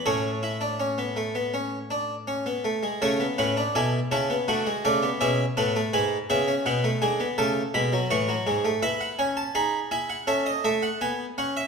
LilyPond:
<<
  \new Staff \with { instrumentName = "Harpsichord" } { \time 4/4 \key a \major \tempo 4 = 82 << { cis''2.~ cis''8 r8 | a''8 fis''8 gis''8 a''8 fis''8 d''8 e''8 fis''8 | gis''8 e''8 fis''8 gis''8 a''8 b''8 cis'''4 | e''16 fis''16 gis''16 a''16 b''8 gis''16 fis''16 e''16 dis''16 e''16 fis''16 gis''8 fis''16 e''16 | } \\ { a'2.~ a'8 r8 | cis''8 b'8 a'8 e'8 fis'4 gis'8 a'8 | b'8 gis'4. a'2 | b'4 gis'4 a'2 | } >> }
  \new Staff \with { instrumentName = "Harpsichord" } { \time 4/4 \key a \major << { cis'8 e'16 d'16 cis'16 b16 a16 b16 cis'8 d'8 cis'16 b16 a16 gis16 | a16 b16 cis'16 d'16 e'8 cis'16 b16 a16 gis16 a16 b16 cis'8 b16 a16 | gis8 b16 cis'16 b16 a16 gis16 b16 a8 gis16 fis16 e16 fis16 gis16 a16 | e'8 cis'8 dis'8 e'8 cis'8 a8 b8 cis'8 | } \\ { a,2.~ a,8 r8 | cis8 a,8 b,8 cis8 d8 cis8 b,8 a,8 | gis,8 cis8 b,8 d8 cis8 b,8 a,8 gis,8 | r1 | } >> }
>>